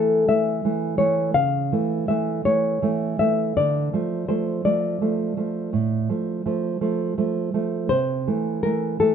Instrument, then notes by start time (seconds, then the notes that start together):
nylon-string guitar
Already playing: E3 A3 A4
0.29 E3 A3 E5
0.65 E3 A3
0.98 E3 A3 C#5
1.34 C#3 F5
1.72 E3 A3
2.08 E3 A3 E5
2.45 E3 A3 C#5
2.82 E3 A3
3.19 E3 A3 E5
3.57 D3 D5
3.93 F3 A3
4.29 F3 A3 C5
4.65 F3 A3 D5
5.01 F3 A3
5.37 F3 A3
5.73 A2
6.09 F3 A3
6.46 F3 A3
6.81 F3 A3
7.18 F3 A3
7.54 F3 A3
7.89 C3 C5
8.27 E3 A3
8.63 E3 A3 A#4
9.00 E3 A3 A4